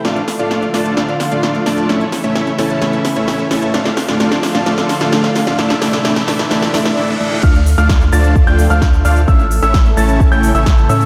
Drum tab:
CC |----------------|----------------|----------------|----------------|
HH |xxoxxxoxxxoxxxox|xxoxxxoxxxoxoxox|xxoxxxoxxxoxxxox|xxoxxxoxxxo-----|
SH |----------------|----------------|----------------|----------------|
SD |o-o-o-o-o-o-o-o-|o-o-o-o-o-o-o-o-|oooooooooooooooo|oooooooooooo----|
BD |----------------|----------------|----------------|----------------|

CC |x---------------|----------------|
HH |xxoxxxoxxxoxxxox|xxoxxxoxxxoxxxox|
SH |xxxxxxxxxxxxxxxx|xxxxxxxxxxxxxxxx|
SD |----o-------o---|----o-------o---|
BD |o---o---o---o---|o---o---o---o---|